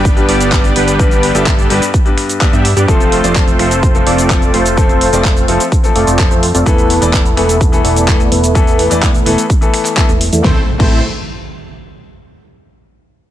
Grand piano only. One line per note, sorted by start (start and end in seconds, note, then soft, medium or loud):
0.16 0.49 G2 medium
0.16 0.49 G3 medium
0.16 0.49 B3 medium
0.16 0.50 D4 medium
0.16 0.50 B4 medium
0.52 0.63 G2 medium
0.52 0.63 G3 medium
0.52 0.63 B3 medium
0.52 0.63 D4 medium
0.52 0.63 B4 medium
0.99 1.32 G2 medium
0.99 1.32 G3 medium
0.99 1.32 B3 medium
0.99 1.32 D4 medium
0.99 1.32 B4 loud
1.34 1.52 G2 medium
1.34 1.52 G3 medium
1.34 1.52 B3 medium
1.34 1.52 D4 medium
1.34 1.52 E5 medium
1.70 1.87 G2 medium
1.70 1.87 G3 medium
1.70 1.87 B3 medium
1.70 1.88 D4 medium
1.70 1.88 B4 medium
2.05 2.38 G2 medium
2.05 2.38 G3 medium
2.05 2.38 B3 medium
2.05 2.38 D4 medium
2.05 2.39 B4 medium
2.41 2.52 G2 medium
2.41 2.52 G3 medium
2.41 2.52 B3 medium
2.41 2.52 D4 medium
2.41 2.52 B4 medium
2.88 3.21 F3 medium
2.88 3.21 A3 medium
2.88 3.21 C4 medium
2.88 3.21 A4 medium
3.23 3.41 F3 medium
3.23 3.41 A3 medium
3.23 3.41 C4 medium
3.23 3.41 D5 medium
3.59 3.76 F3 medium
3.59 3.76 A3 medium
3.59 3.76 C4 medium
3.59 3.77 A4 medium
3.94 4.27 F3 medium
3.94 4.27 A3 medium
3.94 4.27 C4 medium
3.94 4.28 A4 medium
4.30 4.41 F3 medium
4.30 4.41 A3 medium
4.30 4.41 C4 medium
4.30 4.41 A4 medium
4.77 5.10 F3 medium
4.77 5.10 A3 medium
4.77 5.10 C4 medium
4.77 5.10 A4 loud
5.13 5.30 F3 medium
5.13 5.30 A3 medium
5.13 5.30 C4 medium
5.13 5.30 D5 medium
5.48 5.65 F3 medium
5.48 5.65 A3 medium
5.48 5.66 C4 medium
5.48 5.66 A4 medium
5.83 6.16 F3 medium
5.83 6.16 A3 medium
5.83 6.17 C4 medium
5.83 6.17 A4 medium
6.19 6.30 F3 medium
6.19 6.30 A3 medium
6.19 6.30 C4 medium
6.19 6.30 A4 medium
6.66 6.99 E3 medium
6.66 6.99 A3 medium
6.66 6.99 B3 medium
6.66 6.99 A4 medium
7.01 7.19 E3 medium
7.01 7.19 A3 medium
7.01 7.19 B3 medium
7.01 7.19 D5 medium
7.37 7.54 E3 medium
7.37 7.54 A3 medium
7.37 7.54 B3 medium
7.37 7.55 A4 medium
7.72 8.05 E3 medium
7.72 8.05 A3 medium
7.72 8.05 B3 medium
7.72 8.06 A4 medium
8.07 8.18 E3 medium
8.07 8.19 A3 medium
8.07 8.19 B3 medium
8.07 8.19 A4 medium
8.55 8.88 E3 medium
8.55 8.88 A3 medium
8.55 8.88 B3 medium
8.55 8.88 A4 loud
8.90 9.08 E3 medium
8.90 9.08 A3 medium
8.90 9.08 B3 medium
8.90 9.08 D5 medium
9.26 9.43 E3 medium
9.26 9.43 A3 medium
9.26 9.43 B3 medium
9.26 9.44 A4 medium
9.61 9.94 E3 medium
9.61 9.94 A3 medium
9.61 9.94 B3 medium
9.61 9.95 A4 medium
9.97 10.08 E3 medium
9.97 10.08 A3 medium
9.97 10.08 B3 medium
9.97 10.08 A4 medium
10.43 10.57 A3 medium
10.43 10.57 C4 medium
10.43 10.58 E4 medium
10.43 10.59 C5 medium
10.78 10.96 A3 medium
10.78 10.97 C4 medium
10.78 10.98 E4 medium
10.78 10.98 C5 medium